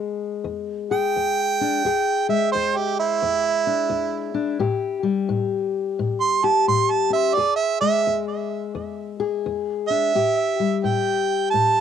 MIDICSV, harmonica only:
0, 0, Header, 1, 2, 480
1, 0, Start_track
1, 0, Tempo, 692042
1, 1272, Time_signature, 4, 2, 24, 8
1, 8188, End_track
2, 0, Start_track
2, 0, Title_t, "Harmonica"
2, 0, Program_c, 0, 22
2, 640, Note_on_c, 0, 79, 111
2, 1568, Note_off_c, 0, 79, 0
2, 1588, Note_on_c, 0, 76, 93
2, 1742, Note_off_c, 0, 76, 0
2, 1746, Note_on_c, 0, 72, 91
2, 1920, Note_on_c, 0, 67, 97
2, 1930, Note_off_c, 0, 72, 0
2, 2071, Note_off_c, 0, 67, 0
2, 2078, Note_on_c, 0, 64, 109
2, 3006, Note_off_c, 0, 64, 0
2, 4306, Note_on_c, 0, 84, 95
2, 4469, Note_on_c, 0, 81, 99
2, 4479, Note_off_c, 0, 84, 0
2, 4624, Note_off_c, 0, 81, 0
2, 4636, Note_on_c, 0, 84, 92
2, 4789, Note_on_c, 0, 81, 101
2, 4800, Note_off_c, 0, 84, 0
2, 4942, Note_off_c, 0, 81, 0
2, 4946, Note_on_c, 0, 76, 95
2, 5092, Note_on_c, 0, 74, 100
2, 5102, Note_off_c, 0, 76, 0
2, 5238, Note_off_c, 0, 74, 0
2, 5242, Note_on_c, 0, 76, 100
2, 5410, Note_off_c, 0, 76, 0
2, 5415, Note_on_c, 0, 76, 108
2, 5674, Note_off_c, 0, 76, 0
2, 6848, Note_on_c, 0, 76, 100
2, 7481, Note_off_c, 0, 76, 0
2, 7520, Note_on_c, 0, 79, 91
2, 7969, Note_off_c, 0, 79, 0
2, 7981, Note_on_c, 0, 81, 100
2, 8188, Note_off_c, 0, 81, 0
2, 8188, End_track
0, 0, End_of_file